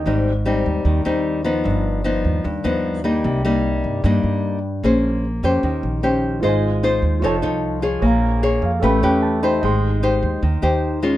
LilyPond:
<<
  \new Staff \with { instrumentName = "Grand piano" } { \time 4/4 \key aes \major \tempo 4 = 150 << { r1 | r1 | r1 | r1 |
r1 | r4. f''8 g''4 a''8 b''8 | r1 | } \\ { r1 | r1 | r1 | r1 |
<f' c'' ees'' aes''>2 <f' des'' ees'' a''>2 | <aes' des'' f'' bes''>2 <a' cis'' b''>2 | <ees'' g'' c'''>1 | } >> }
  \new Staff \with { instrumentName = "Nylon-string guitar" } { \time 4/4 \key aes \major << { <g c' ees'>8 r8 <g c' ees'>4. <g c' ees'>4 <f ces' ees'>8~ | <f ces' ees'>4 <f b dis'>4 r8 <f b dis'>4 <g ais dis'>8~ | <g ais dis'>8 <g bes ees'>4. <g bes ees'>4. r8 | <des' aes' c''>4 r8 <des' g' c''>4. <des' g' c''>4 |
<ees' f' c''>8 r8 <ees' f' c''>4 <ees' a' des''>8 <ees' a' des''>4 <f' aes' des''>8~ | <f' aes' des''>4 <f' aes' des''>8 r8 <cis' g' b'>8 <cis' g' b'>4 <ees' g' c''>8~ | <ees' g' c''>4 <ees' g' c''>4 r8 <ees' g' c''>4 <aes des' f'>8 | } \\ { aes,2 ees2 | g,2 g,2 | c2 g,2 | bes2 ees2 |
aes2 f2 | bes2 a2 | aes2 ees2 | } >> }
  \new Staff \with { instrumentName = "Upright bass" } { \clef bass \time 4/4 \key aes \major aes,,4. ees,8 ees,8 ees,4. | g,,4. dis,8 dis,8 dis,4. | c,4. g,8 g,8 g,4. | bes,,4. f,8 ees,8 bes,,4. |
aes,,4. ees,8 f,,8 c,4. | bes,,4. f,8 a,,8 e,4. | aes,,4. ees,8 ees,8 ees,4. | }
>>